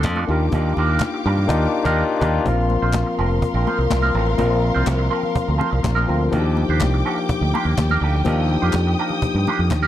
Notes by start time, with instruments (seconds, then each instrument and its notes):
Already playing: tine electric piano A#3 C4 D4 F4 A4, string section A4 D5 C6
0.04 fingered electric bass F2, cajon bass, cajon slap, clap, high conga
0.16 clean electric guitar F3 C4 D4 A4, high conga
0.27 fingered electric bass D#2, clean electric guitar G3 D4 F4, tine electric piano A#3 D4 D#4 F4 G4, string section G4 F5 D6
0.31 clean electric guitar A#4
0.40 muted clean electric guitar stroke, cajon slap
0.52 fingered electric bass D#2, clean electric guitar G3 D4 F4 A#4, cajon bass, muted conga
0.77 fingered electric bass D#2, clean electric guitar G3 D4 F4 A#4, muted conga
0.89 clean electric guitar G3 D4 F4 A#4, cajon slap
1.00 muted clean electric guitar stroke, cajon bass, cajon slap, clap, high conga
1.14 muted clean electric guitar stroke
1.26 fingered electric bass G2, clean electric guitar G3 D4 F4 A#4
1.37 clean electric guitar G3 D4 F4 A#4, cajon slap, low conga
1.47 fingered electric bass D#2, clean electric guitar G3 D4 F4 A#4, tine electric piano A#3 D4 D#4 F4 G4, cajon bass, cajon slap
1.84 fingered electric bass D#2, clean electric guitar G3 D4 F4 A#4, tine electric piano A#3 D4 D#4 F4 G4, cajon bass, cajon slap
2.20 fingered electric bass D#2, clean electric guitar G3 D4 F4, tine electric piano A#3 D4 D#4 F4 G4, cajon bass, cajon slap
2.24 clean electric guitar A#4
2.44 fingered electric bass A#1, tine electric piano F3 A#3 C4 F4 A#4, clean electric guitar F3 C4 F4 A#4, string section A#4 F5 C6, cajon bass, muted conga
2.58 muted clean electric guitar stroke
2.70 muted clean electric guitar stroke, muted conga
2.82 fingered electric bass A#1, clean electric guitar F3 C4 F4 C5, cajon slap
2.93 muted clean electric guitar stroke, cajon bass, cajon slap, clap, high conga
3.06 muted clean electric guitar stroke
3.19 fingered electric bass F1, clean electric guitar F3 C4 F4 A#4
3.30 muted clean electric guitar stroke, cajon slap
3.42 muted clean electric guitar stroke, cajon bass
3.54 fingered electric bass A#1, clean electric guitar F3 C4 F4 A#4
3.66 clean electric guitar F3 C4 F4 C5, muted conga
3.78 fingered electric bass C2, muted clean electric guitar stroke
3.90 fingered electric bass C2, muted clean electric guitar stroke, cajon bass, cajon slap, clap, high conga
4.02 clean electric guitar F3 C4 F4 A#4, high conga
4.14 fingered electric bass A1, clean electric guitar F3 C4 F4 A#4
4.26 muted clean electric guitar stroke, cajon slap
4.37 fingered electric bass A#1, tine electric piano F3 A#3 C4 F4 A#4, clean electric guitar F3 C4 F4 A#4, cajon bass, muted conga
4.49 muted clean electric guitar stroke
4.63 muted clean electric guitar stroke
4.74 fingered electric bass C2, clean electric guitar F3 C4 F4 C5, cajon slap
4.87 fingered electric bass C2, muted clean electric guitar stroke, cajon bass, cajon slap, clap, high conga
4.99 muted clean electric guitar stroke
5.10 clean electric guitar F3 C4 F4 A#4
5.23 muted clean electric guitar stroke, cajon slap, low conga
5.35 cajon bass
5.48 fingered electric bass D2, muted clean electric guitar stroke
5.58 clean electric guitar F3 C4 F4 C5, muted conga, low conga
5.71 fingered electric bass C2, muted clean electric guitar stroke, cajon slap
5.83 fingered electric bass A#1, muted clean electric guitar stroke, cajon bass, cajon slap, clap, high conga
5.95 clean electric guitar F3 C4 F4 A#4, high conga
6.07 fingered electric bass D2, tine electric piano F3 A#3 C4 F4 A#4, clean electric guitar F3 C4 F4 A#4
6.20 muted clean electric guitar stroke, cajon slap
6.31 fingered electric bass D#2, tine electric piano F3 A#3 D4 D#4 F#4, clean electric guitar A#3 D4 G4 A#4, string section G4 G5 D6, cajon bass, muted conga
6.40 tine electric piano G4
6.45 muted clean electric guitar stroke
6.57 muted clean electric guitar stroke, muted conga
6.69 fingered electric bass D#2, clean electric guitar A#3 D4 G4 C5, cajon slap
6.80 fingered electric bass C2, muted clean electric guitar stroke, cajon bass, cajon slap, clap, high conga
6.94 muted clean electric guitar stroke
7.06 clean electric guitar A#3 D4 G4 A#4
7.17 muted clean electric guitar stroke, cajon slap
7.29 cajon bass
7.41 fingered electric bass D2, muted clean electric guitar stroke
7.54 clean electric guitar A#3 D4 G4 C5, muted conga
7.65 fingered electric bass D#2, muted clean electric guitar stroke
7.78 fingered electric bass D#2, muted clean electric guitar stroke, cajon bass, cajon slap, clap, high conga
7.90 clean electric guitar A#3 D4 G4 A#4, high conga
8.01 fingered electric bass D2, clean electric guitar A#3 D4 G4 A#4
8.13 muted clean electric guitar stroke, cajon slap
8.24 fingered electric bass D#2, tine electric piano F3 A#3 D4 D#4 G4, clean electric guitar A#3 D4 G4 A#4, string section D#6, cajon bass, muted conga
8.38 muted clean electric guitar stroke
8.50 muted clean electric guitar stroke, muted conga
8.62 fingered electric bass F2, clean electric guitar A#3 D4 G4 C5
8.73 fingered electric bass F2, cajon bass, cajon slap, clap, high conga
8.87 muted clean electric guitar stroke
8.99 clean electric guitar A#3 D4 G4 A#4
9.09 muted clean electric guitar stroke, cajon slap, low conga
9.22 cajon bass
9.35 fingered electric bass G2, muted clean electric guitar stroke
9.47 clean electric guitar A#3 D4 G4 C5, muted conga, low conga
9.58 fingered electric bass F2, muted clean electric guitar stroke, cajon slap
9.71 fingered electric bass D#2, muted clean electric guitar stroke, cajon bass, cajon slap, clap, high conga
9.82 clean electric guitar A#3 D4 G4 A#4, high conga